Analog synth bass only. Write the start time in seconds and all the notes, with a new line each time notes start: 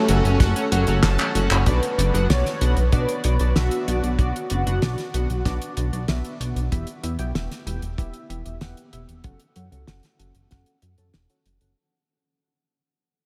0.09 F#1
0.24 F#1
0.40 F#1
0.72 F#1
0.88 F#1
1.03 F#1
1.35 F#1
1.51 F#1
1.67 B1
1.98 F#1
2.14 F#1
2.30 B1
2.61 B1
2.77 B1
2.93 B1
3.24 B1
3.40 B1
3.56 B1
3.88 B1
4.03 B1
4.19 B1
4.51 F#1
4.67 F#1
4.82 B1
5.14 B1
5.30 B1
5.45 B1
5.77 B1
5.93 B1
6.09 B1
6.40 B1
6.56 B1
6.72 E1
7.03 E2
7.19 B1
7.35 E1
7.66 E1
7.82 E1
7.98 E1
8.30 E1
8.45 E1
8.61 E1
8.93 E1
9.09 E1
9.24 F#1
9.56 F#2
9.72 C#2
9.88 F#1
10.19 F#1
10.35 F#1
10.52 F#1
10.82 F#2
10.98 F#2
11.14 E1
11.45 F#1
11.61 F#1